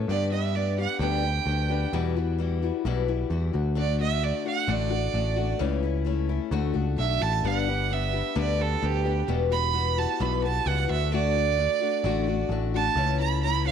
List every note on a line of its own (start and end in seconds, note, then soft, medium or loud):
0.08 0.86 G2 medium
0.08 0.32 G2 medium
0.08 0.32 D3 medium
0.08 0.32 G3 medium
0.08 0.32 B3 medium
0.08 0.32 D4 medium
0.08 0.31 G4 medium
0.08 0.31 D5 medium
0.32 0.54 G3 soft
0.32 0.55 B3 soft
0.32 0.55 D4 soft
0.32 0.55 G4 soft
0.32 0.57 E5 medium
0.55 0.78 G3 medium
0.55 0.78 B3 medium
0.55 0.78 D4 medium
0.55 0.77 G4 medium
0.55 0.77 D5 medium
0.78 1.01 G3 soft
0.78 1.01 B3 soft
0.78 1.01 D4 soft
0.78 1.01 G4 soft
0.78 1.00 F#5 medium
0.99 1.38 D2 medium
0.99 1.23 G2 medium
0.99 1.24 D3 medium
0.99 1.24 G3 medium
0.99 1.24 B3 medium
0.99 1.24 D4 medium
0.99 1.22 G4 medium
0.99 1.90 G5 loud
1.24 1.46 G3 soft
1.24 1.46 B3 soft
1.24 1.47 D4 medium
1.24 1.47 G4 medium
1.46 1.85 D2 medium
1.46 1.70 G3 medium
1.46 1.70 B3 medium
1.46 1.69 D4 medium
1.46 1.68 G4 medium
1.69 1.92 G3 medium
1.69 1.93 B3 soft
1.69 1.93 D4 medium
1.69 1.92 G4 medium
1.93 2.70 E2 medium
1.93 2.16 E2 medium
1.93 2.16 B2 medium
1.93 2.16 E3 medium
1.93 2.16 G3 loud
1.93 2.15 E4 medium
1.93 2.15 F#4 loud
2.16 2.37 E3 soft
2.16 2.38 G3 medium
2.16 2.39 E4 medium
2.16 2.39 F#4 medium
2.38 2.62 E3 medium
2.38 2.62 G3 medium
2.38 2.62 E4 medium
2.38 2.61 F#4 medium
2.62 2.85 E3 soft
2.62 2.85 G3 soft
2.62 2.85 E4 medium
2.62 2.85 F#4 medium
2.85 3.23 B1 medium
2.85 3.08 E2 medium
2.85 3.08 B2 medium
2.85 3.08 E3 medium
2.85 3.07 G3 medium
2.85 3.07 E4 loud
2.85 3.07 F#4 loud
3.08 3.29 E3 soft
3.08 3.29 G3 medium
3.08 3.30 E4 medium
3.08 3.31 F#4 medium
3.30 3.50 E2 medium
3.30 3.54 E3 medium
3.30 3.54 G3 medium
3.30 3.54 E4 medium
3.30 3.52 F#4 medium
3.53 4.31 D2 medium
3.53 3.75 A3 soft
3.53 3.76 D4 soft
3.53 3.76 F#4 medium
3.75 3.99 D3 medium
3.75 3.99 A3 medium
3.75 3.99 D4 medium
3.75 3.98 F#4 medium
3.75 4.00 D5 medium
3.99 4.21 A3 soft
3.99 4.22 D4 soft
3.99 4.23 F#4 medium
3.99 4.25 E5 loud
4.22 4.45 D3 medium
4.22 4.45 A3 medium
4.22 4.45 D4 medium
4.22 4.44 F#4 medium
4.22 4.46 D5 medium
4.45 4.66 A3 soft
4.45 4.67 D4 medium
4.45 4.67 F#4 medium
4.45 4.72 F#5 medium
4.67 5.07 A1 medium
4.67 4.91 D3 medium
4.67 4.91 A3 medium
4.67 4.89 D4 medium
4.67 4.89 F#4 medium
4.67 5.59 D5 loud
4.90 5.13 A3 soft
4.90 5.13 D4 soft
4.90 5.14 F#4 medium
5.12 5.53 A1 medium
5.12 5.37 D3 medium
5.12 5.37 A3 medium
5.12 5.36 D4 medium
5.12 5.35 F#4 medium
5.36 5.58 A3 soft
5.36 5.60 D4 soft
5.36 5.60 F#4 medium
5.59 6.38 C#2 medium
5.59 5.83 C#3 medium
5.59 5.83 E3 medium
5.59 5.83 A3 medium
5.59 5.83 C#4 medium
5.59 5.82 E4 medium
5.83 6.05 A3 soft
5.83 6.05 C#4 medium
5.83 6.06 E4 medium
6.05 6.29 E3 medium
6.05 6.29 A3 medium
6.05 6.29 C#4 medium
6.05 6.28 E4 medium
6.29 6.51 A3 soft
6.29 6.52 C#4 soft
6.29 6.52 E4 medium
6.51 6.71 D2 medium
6.51 6.75 D3 medium
6.51 6.74 A3 medium
6.51 6.73 D4 medium
6.51 6.72 F#4 loud
6.73 6.96 C#2 medium
6.73 6.97 A3 soft
6.73 6.97 D4 medium
6.73 6.98 F#4 medium
6.96 7.19 B1 medium
6.96 7.21 D3 medium
6.96 7.21 A3 medium
6.96 7.21 D4 medium
6.96 7.19 F#4 medium
6.96 7.23 E5 medium
7.20 7.42 A1 medium
7.20 7.44 A3 soft
7.20 7.44 D4 soft
7.20 7.44 F#4 soft
7.20 7.44 A5 loud
7.43 8.21 G1 medium
7.43 7.67 G2 medium
7.43 7.68 D3 medium
7.43 7.68 G3 medium
7.43 7.68 B3 medium
7.43 7.68 D4 medium
7.43 7.67 G4 medium
7.47 7.94 F#5 medium
7.68 7.89 G3 soft
7.68 7.89 B3 soft
7.68 7.90 D4 soft
7.68 7.91 G4 medium
7.90 8.13 G3 medium
7.90 8.13 B3 medium
7.90 8.12 D4 medium
7.90 8.12 G4 medium
7.90 8.36 E5 medium
8.13 8.34 G3 soft
8.13 8.34 B3 soft
8.13 8.35 D4 medium
8.13 8.35 G4 soft
8.35 8.75 D2 medium
8.35 8.59 G2 medium
8.35 8.59 D3 medium
8.35 8.59 G3 medium
8.35 8.59 B3 medium
8.35 8.59 D4 medium
8.35 8.58 G4 medium
8.35 8.63 D5 medium
8.59 8.80 G3 soft
8.59 8.81 B3 soft
8.59 8.82 D4 medium
8.59 8.82 G4 medium
8.59 8.87 A4 medium
8.82 9.21 D2 medium
8.82 9.05 G3 medium
8.82 9.05 B3 medium
8.82 9.04 D4 medium
8.82 9.04 G4 medium
8.82 9.28 G4 loud
9.05 9.28 G3 soft
9.05 9.27 B3 soft
9.05 9.28 D4 medium
9.05 9.28 G4 soft
9.28 10.05 E1 medium
9.28 9.51 E2 medium
9.28 9.51 B2 medium
9.28 9.51 E3 medium
9.28 9.51 G3 medium
9.28 9.50 B3 medium
9.28 9.49 F#4 medium
9.50 9.71 E3 soft
9.50 9.72 G3 medium
9.50 9.73 B3 medium
9.50 9.73 F#4 medium
9.50 10.00 B5 loud
9.73 9.96 E3 medium
9.73 9.97 G3 medium
9.73 9.97 B3 medium
9.73 9.96 F#4 medium
9.97 10.20 E3 soft
9.97 10.20 G3 medium
9.97 10.20 B3 medium
9.97 10.20 F#4 medium
9.97 10.23 A5 medium
10.20 10.59 B1 loud
10.20 10.43 E2 medium
10.20 10.43 B2 medium
10.20 10.43 E3 medium
10.20 10.44 G3 medium
10.20 10.44 B3 medium
10.20 10.43 F#4 medium
10.20 10.43 B5 medium
10.44 10.65 E3 soft
10.44 10.66 G3 soft
10.44 10.67 B3 medium
10.44 10.67 F#4 medium
10.44 10.69 A5 medium
10.66 10.85 C#2 medium
10.66 10.89 E3 medium
10.66 10.90 G3 medium
10.66 10.89 B3 medium
10.66 10.87 F#4 medium
10.66 10.89 F#5 loud
10.88 11.67 D2 medium
10.88 11.11 A3 soft
10.88 11.12 D4 medium
10.88 11.12 F#4 medium
10.88 11.12 E5 loud
11.12 11.35 D3 medium
11.12 11.35 A3 medium
11.12 11.36 D4 medium
11.12 11.35 F#4 medium
11.12 12.47 D5 loud
11.36 11.57 A3 soft
11.36 11.58 D4 medium
11.36 11.59 F#4 medium
11.58 11.81 D3 medium
11.58 11.81 A3 medium
11.58 11.81 D4 medium
11.58 11.80 F#4 medium
11.81 12.04 A3 medium
11.81 12.04 D4 medium
11.81 12.04 F#4 medium
12.04 12.43 A1 medium
12.04 12.27 D3 medium
12.04 12.27 A3 medium
12.04 12.28 D4 medium
12.04 12.27 F#4 loud
12.28 12.50 A3 medium
12.28 12.51 D4 medium
12.28 12.50 F#4 medium
12.49 12.88 A1 loud
12.49 12.73 D3 medium
12.49 12.74 A3 medium
12.49 12.74 D4 medium
12.49 12.73 F#4 medium
12.74 12.96 A3 soft
12.74 12.97 D4 medium
12.74 12.96 F#4 medium
12.74 13.19 A5 loud
12.95 13.72 C#2 medium
12.95 13.19 C#3 medium
12.95 13.19 E3 medium
12.95 13.19 A3 medium
12.95 13.19 C#4 medium
12.95 13.18 E4 medium
13.19 13.42 A3 medium
13.19 13.43 C#4 medium
13.19 13.42 E4 medium
13.19 13.42 B5 medium
13.42 13.65 E3 medium
13.42 13.66 A3 medium
13.42 13.65 C#4 medium
13.42 13.64 E4 medium
13.42 13.65 B5 loud
13.65 13.72 A3 soft
13.65 13.72 C#4 medium
13.65 13.72 E4 medium
13.65 13.72 F#5 medium